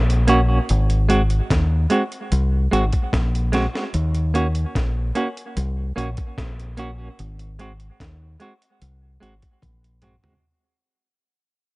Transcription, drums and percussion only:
0, 0, Header, 1, 2, 480
1, 0, Start_track
1, 0, Tempo, 811908
1, 407, Time_signature, 4, 2, 24, 8
1, 6951, End_track
2, 0, Start_track
2, 0, Title_t, "Drums"
2, 58, Note_on_c, 9, 42, 57
2, 118, Note_off_c, 9, 42, 0
2, 164, Note_on_c, 9, 42, 83
2, 223, Note_off_c, 9, 42, 0
2, 409, Note_on_c, 9, 42, 85
2, 468, Note_off_c, 9, 42, 0
2, 531, Note_on_c, 9, 42, 45
2, 590, Note_off_c, 9, 42, 0
2, 649, Note_on_c, 9, 42, 78
2, 708, Note_off_c, 9, 42, 0
2, 769, Note_on_c, 9, 42, 50
2, 828, Note_off_c, 9, 42, 0
2, 890, Note_on_c, 9, 36, 117
2, 892, Note_on_c, 9, 42, 89
2, 895, Note_on_c, 9, 38, 111
2, 949, Note_off_c, 9, 36, 0
2, 951, Note_off_c, 9, 42, 0
2, 954, Note_off_c, 9, 38, 0
2, 1124, Note_on_c, 9, 42, 65
2, 1183, Note_off_c, 9, 42, 0
2, 1252, Note_on_c, 9, 42, 48
2, 1312, Note_off_c, 9, 42, 0
2, 1370, Note_on_c, 9, 42, 90
2, 1429, Note_off_c, 9, 42, 0
2, 1615, Note_on_c, 9, 42, 79
2, 1674, Note_off_c, 9, 42, 0
2, 1730, Note_on_c, 9, 42, 56
2, 1734, Note_on_c, 9, 36, 69
2, 1789, Note_off_c, 9, 42, 0
2, 1793, Note_off_c, 9, 36, 0
2, 1851, Note_on_c, 9, 36, 112
2, 1854, Note_on_c, 9, 38, 117
2, 1855, Note_on_c, 9, 42, 87
2, 1910, Note_off_c, 9, 36, 0
2, 1914, Note_off_c, 9, 38, 0
2, 1914, Note_off_c, 9, 42, 0
2, 1981, Note_on_c, 9, 42, 53
2, 2040, Note_off_c, 9, 42, 0
2, 2087, Note_on_c, 9, 42, 81
2, 2097, Note_on_c, 9, 38, 69
2, 2146, Note_off_c, 9, 42, 0
2, 2156, Note_off_c, 9, 38, 0
2, 2219, Note_on_c, 9, 38, 69
2, 2278, Note_off_c, 9, 38, 0
2, 2329, Note_on_c, 9, 42, 81
2, 2388, Note_off_c, 9, 42, 0
2, 2451, Note_on_c, 9, 42, 44
2, 2510, Note_off_c, 9, 42, 0
2, 2571, Note_on_c, 9, 42, 68
2, 2631, Note_off_c, 9, 42, 0
2, 2689, Note_on_c, 9, 42, 48
2, 2749, Note_off_c, 9, 42, 0
2, 2811, Note_on_c, 9, 36, 105
2, 2813, Note_on_c, 9, 42, 82
2, 2817, Note_on_c, 9, 38, 109
2, 2870, Note_off_c, 9, 36, 0
2, 2873, Note_off_c, 9, 42, 0
2, 2876, Note_off_c, 9, 38, 0
2, 3047, Note_on_c, 9, 42, 63
2, 3106, Note_off_c, 9, 42, 0
2, 3176, Note_on_c, 9, 42, 47
2, 3235, Note_off_c, 9, 42, 0
2, 3292, Note_on_c, 9, 42, 96
2, 3351, Note_off_c, 9, 42, 0
2, 3535, Note_on_c, 9, 42, 73
2, 3594, Note_off_c, 9, 42, 0
2, 3648, Note_on_c, 9, 42, 60
2, 3654, Note_on_c, 9, 36, 70
2, 3707, Note_off_c, 9, 42, 0
2, 3713, Note_off_c, 9, 36, 0
2, 3771, Note_on_c, 9, 36, 107
2, 3774, Note_on_c, 9, 38, 104
2, 3774, Note_on_c, 9, 42, 86
2, 3830, Note_off_c, 9, 36, 0
2, 3833, Note_off_c, 9, 38, 0
2, 3833, Note_off_c, 9, 42, 0
2, 3899, Note_on_c, 9, 42, 52
2, 3958, Note_off_c, 9, 42, 0
2, 4005, Note_on_c, 9, 42, 85
2, 4064, Note_off_c, 9, 42, 0
2, 4251, Note_on_c, 9, 42, 79
2, 4310, Note_off_c, 9, 42, 0
2, 4371, Note_on_c, 9, 42, 45
2, 4430, Note_off_c, 9, 42, 0
2, 4490, Note_on_c, 9, 42, 75
2, 4549, Note_off_c, 9, 42, 0
2, 4610, Note_on_c, 9, 42, 44
2, 4669, Note_off_c, 9, 42, 0
2, 4731, Note_on_c, 9, 36, 108
2, 4734, Note_on_c, 9, 42, 82
2, 4737, Note_on_c, 9, 38, 109
2, 4790, Note_off_c, 9, 36, 0
2, 4793, Note_off_c, 9, 42, 0
2, 4797, Note_off_c, 9, 38, 0
2, 4967, Note_on_c, 9, 42, 65
2, 5026, Note_off_c, 9, 42, 0
2, 5096, Note_on_c, 9, 42, 53
2, 5155, Note_off_c, 9, 42, 0
2, 5212, Note_on_c, 9, 42, 101
2, 5271, Note_off_c, 9, 42, 0
2, 5455, Note_on_c, 9, 42, 77
2, 5515, Note_off_c, 9, 42, 0
2, 5572, Note_on_c, 9, 42, 60
2, 5575, Note_on_c, 9, 36, 61
2, 5631, Note_off_c, 9, 42, 0
2, 5634, Note_off_c, 9, 36, 0
2, 5689, Note_on_c, 9, 48, 57
2, 5691, Note_on_c, 9, 36, 103
2, 5694, Note_on_c, 9, 42, 96
2, 5748, Note_off_c, 9, 48, 0
2, 5750, Note_off_c, 9, 36, 0
2, 5753, Note_off_c, 9, 42, 0
2, 5819, Note_on_c, 9, 42, 51
2, 5878, Note_off_c, 9, 42, 0
2, 5922, Note_on_c, 9, 42, 82
2, 5927, Note_on_c, 9, 45, 94
2, 5981, Note_off_c, 9, 42, 0
2, 5986, Note_off_c, 9, 45, 0
2, 6052, Note_on_c, 9, 43, 83
2, 6111, Note_off_c, 9, 43, 0
2, 6951, End_track
0, 0, End_of_file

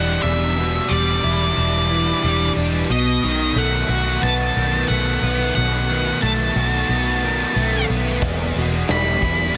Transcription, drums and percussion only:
0, 0, Header, 1, 2, 480
1, 0, Start_track
1, 0, Key_signature, 1, "minor"
1, 0, Tempo, 665927
1, 164, Time_signature, 4, 2, 24, 8
1, 6899, End_track
2, 0, Start_track
2, 0, Title_t, "Drums"
2, 5925, Note_on_c, 9, 36, 106
2, 5927, Note_on_c, 9, 42, 87
2, 5998, Note_off_c, 9, 36, 0
2, 5999, Note_off_c, 9, 42, 0
2, 6169, Note_on_c, 9, 42, 55
2, 6241, Note_off_c, 9, 42, 0
2, 6405, Note_on_c, 9, 42, 78
2, 6408, Note_on_c, 9, 38, 95
2, 6477, Note_off_c, 9, 42, 0
2, 6480, Note_off_c, 9, 38, 0
2, 6648, Note_on_c, 9, 36, 76
2, 6649, Note_on_c, 9, 42, 65
2, 6720, Note_off_c, 9, 36, 0
2, 6721, Note_off_c, 9, 42, 0
2, 6899, End_track
0, 0, End_of_file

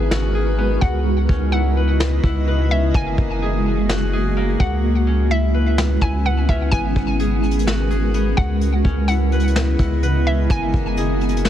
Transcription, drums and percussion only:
0, 0, Header, 1, 2, 480
1, 0, Start_track
1, 0, Tempo, 472441
1, 1071, Time_signature, 4, 2, 24, 8
1, 11678, End_track
2, 0, Start_track
2, 0, Title_t, "Drums"
2, 114, Note_on_c, 9, 38, 113
2, 216, Note_off_c, 9, 38, 0
2, 833, Note_on_c, 9, 36, 101
2, 934, Note_off_c, 9, 36, 0
2, 1312, Note_on_c, 9, 36, 92
2, 1414, Note_off_c, 9, 36, 0
2, 2034, Note_on_c, 9, 38, 116
2, 2136, Note_off_c, 9, 38, 0
2, 2271, Note_on_c, 9, 36, 90
2, 2373, Note_off_c, 9, 36, 0
2, 2991, Note_on_c, 9, 36, 122
2, 3093, Note_off_c, 9, 36, 0
2, 3232, Note_on_c, 9, 36, 91
2, 3334, Note_off_c, 9, 36, 0
2, 3956, Note_on_c, 9, 38, 116
2, 4058, Note_off_c, 9, 38, 0
2, 4673, Note_on_c, 9, 36, 103
2, 4775, Note_off_c, 9, 36, 0
2, 5874, Note_on_c, 9, 38, 116
2, 5975, Note_off_c, 9, 38, 0
2, 6111, Note_on_c, 9, 36, 90
2, 6213, Note_off_c, 9, 36, 0
2, 6592, Note_on_c, 9, 36, 100
2, 6694, Note_off_c, 9, 36, 0
2, 6830, Note_on_c, 9, 42, 81
2, 6831, Note_on_c, 9, 36, 119
2, 6932, Note_off_c, 9, 36, 0
2, 6932, Note_off_c, 9, 42, 0
2, 7071, Note_on_c, 9, 36, 89
2, 7173, Note_off_c, 9, 36, 0
2, 7309, Note_on_c, 9, 42, 76
2, 7411, Note_off_c, 9, 42, 0
2, 7551, Note_on_c, 9, 42, 52
2, 7632, Note_off_c, 9, 42, 0
2, 7632, Note_on_c, 9, 42, 67
2, 7712, Note_off_c, 9, 42, 0
2, 7712, Note_on_c, 9, 42, 81
2, 7796, Note_on_c, 9, 38, 111
2, 7813, Note_off_c, 9, 42, 0
2, 7898, Note_off_c, 9, 38, 0
2, 8032, Note_on_c, 9, 42, 63
2, 8134, Note_off_c, 9, 42, 0
2, 8271, Note_on_c, 9, 42, 67
2, 8373, Note_off_c, 9, 42, 0
2, 8511, Note_on_c, 9, 36, 96
2, 8613, Note_off_c, 9, 36, 0
2, 8749, Note_on_c, 9, 42, 80
2, 8851, Note_off_c, 9, 42, 0
2, 8990, Note_on_c, 9, 36, 91
2, 9092, Note_off_c, 9, 36, 0
2, 9226, Note_on_c, 9, 42, 75
2, 9328, Note_off_c, 9, 42, 0
2, 9468, Note_on_c, 9, 42, 48
2, 9548, Note_off_c, 9, 42, 0
2, 9548, Note_on_c, 9, 42, 65
2, 9628, Note_off_c, 9, 42, 0
2, 9628, Note_on_c, 9, 42, 81
2, 9709, Note_off_c, 9, 42, 0
2, 9709, Note_on_c, 9, 42, 75
2, 9711, Note_on_c, 9, 38, 120
2, 9811, Note_off_c, 9, 42, 0
2, 9813, Note_off_c, 9, 38, 0
2, 9948, Note_on_c, 9, 42, 64
2, 9949, Note_on_c, 9, 36, 88
2, 10050, Note_off_c, 9, 36, 0
2, 10050, Note_off_c, 9, 42, 0
2, 10188, Note_on_c, 9, 42, 68
2, 10289, Note_off_c, 9, 42, 0
2, 10667, Note_on_c, 9, 42, 80
2, 10668, Note_on_c, 9, 36, 121
2, 10769, Note_off_c, 9, 42, 0
2, 10770, Note_off_c, 9, 36, 0
2, 10909, Note_on_c, 9, 36, 88
2, 11011, Note_off_c, 9, 36, 0
2, 11147, Note_on_c, 9, 42, 74
2, 11248, Note_off_c, 9, 42, 0
2, 11388, Note_on_c, 9, 42, 50
2, 11469, Note_off_c, 9, 42, 0
2, 11469, Note_on_c, 9, 42, 69
2, 11549, Note_off_c, 9, 42, 0
2, 11549, Note_on_c, 9, 42, 81
2, 11631, Note_off_c, 9, 42, 0
2, 11631, Note_on_c, 9, 42, 76
2, 11633, Note_on_c, 9, 38, 113
2, 11678, Note_off_c, 9, 38, 0
2, 11678, Note_off_c, 9, 42, 0
2, 11678, End_track
0, 0, End_of_file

